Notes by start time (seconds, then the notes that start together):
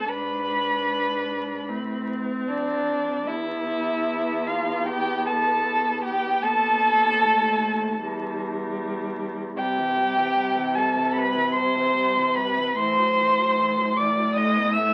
Already playing: A5
0.08 G#2 D4 B4 B5
1.68 A2 C4
2.47 F2 D4 D5
3.26 E2 B3 E4 E5
4.47 F4 F5
4.86 B3 G4 G5
5.25 A4 A5
6.04 G4 G5
6.42 D#2 B3 A4 A5
7.22 A3
8.01 E2 G3
9.57 C3 G3 G4 G5
9.77 E3
9.96 G3
10.17 E3
10.36 G3
10.55 E3
10.75 G3 A4 A5
10.95 E3
11.14 G3 B4 B5
11.34 E3
11.52 G3 C5 C6
11.75 E3
11.94 G3
12.16 E3
12.35 G3 B4 B5
12.57 E3
12.75 A2 E3 C5 C6
12.98 F#3
13.19 E3
13.38 F#3
13.58 E3
13.78 F#3
13.97 E3 D5 D6
14.18 F#3
14.35 A3 D#5 D#6
14.58 B3
14.73 A3 E5 E6